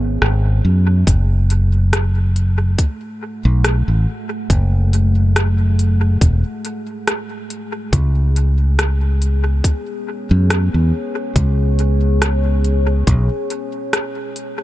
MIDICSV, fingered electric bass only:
0, 0, Header, 1, 2, 480
1, 0, Start_track
1, 0, Key_signature, 3, "minor"
1, 0, Tempo, 857143
1, 601, Time_signature, 4, 2, 24, 8
1, 8194, End_track
2, 0, Start_track
2, 0, Title_t, "Fingered electric bass"
2, 0, Program_c, 0, 33
2, 0, Note_on_c, 0, 32, 91
2, 96, Note_off_c, 0, 32, 0
2, 122, Note_on_c, 0, 32, 85
2, 336, Note_off_c, 0, 32, 0
2, 362, Note_on_c, 0, 42, 81
2, 576, Note_off_c, 0, 42, 0
2, 600, Note_on_c, 0, 30, 87
2, 1540, Note_off_c, 0, 30, 0
2, 1932, Note_on_c, 0, 35, 88
2, 2141, Note_off_c, 0, 35, 0
2, 2172, Note_on_c, 0, 33, 74
2, 2268, Note_off_c, 0, 33, 0
2, 2520, Note_on_c, 0, 30, 90
2, 3460, Note_off_c, 0, 30, 0
2, 3480, Note_on_c, 0, 28, 76
2, 3597, Note_off_c, 0, 28, 0
2, 4439, Note_on_c, 0, 37, 93
2, 5379, Note_off_c, 0, 37, 0
2, 5773, Note_on_c, 0, 42, 89
2, 5982, Note_off_c, 0, 42, 0
2, 6016, Note_on_c, 0, 40, 78
2, 6110, Note_off_c, 0, 40, 0
2, 6360, Note_on_c, 0, 37, 93
2, 7300, Note_off_c, 0, 37, 0
2, 7321, Note_on_c, 0, 35, 76
2, 7437, Note_off_c, 0, 35, 0
2, 8194, End_track
0, 0, End_of_file